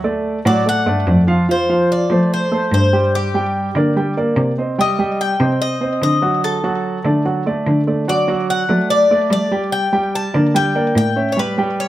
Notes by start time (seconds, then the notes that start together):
Already playing: D2
0.04 A3 A4 D5
0.45 A2 F#3 F#4 D5 F#5
0.66 A3 A4 D5 F#5
0.86 G2 A3 A4 D5
1.07 F2
1.27 F3 F4 F5
1.49 F3 F4 C5 F5
1.69 F3 F4 F5
1.92 D5
2.10 F3 A3 A4 C5
2.34 C5
2.51 A3 A4 C5
2.71 G2 C5
2.93 G3 G4 G5
3.15 G4
3.34 G3 G4 G5
3.75 D3 A#3 A#4 D5
3.96 G3 G4 G5
4.17 A#3 A#4 D5
4.36 C3
4.58 C4 C5 D#5
4.78 G3 G4 D#5 G5
4.99 G3 G4 G5
5.21 G5
5.40 C3 C4 C5 D#5
5.62 D#5
5.81 C4 C5 D#5
6.02 D3 D#5
6.22 F#3 F#4 F#5
6.44 A4
6.64 F#3 F#4 F#5
7.04 D3 A3 A4 D5
7.25 F#3 F#4 F#5
7.46 A3 A4 D5
7.67 D3
7.87 A3 A4 D5
8.08 F#3 F#4 D5 F#5
8.28 F#3 F#4 F#5
8.50 F#5
8.69 F#3 A3 A4 D5
8.90 D5
9.11 A3 A4 D5
9.31 G3 D5
9.51 G3 G4 G5
9.72 G5
9.93 G3 G4 G5
10.15 A5
10.34 D3 A#3 A#4 D5
10.54 G3 G4 G5
10.75 A#3 A#4 D5
10.95 A2 G5
11.16 C#4 C#5 E5
11.32 C#5
11.37 G3 G4 B4 G5
11.58 G3 G4 G5
11.80 C#5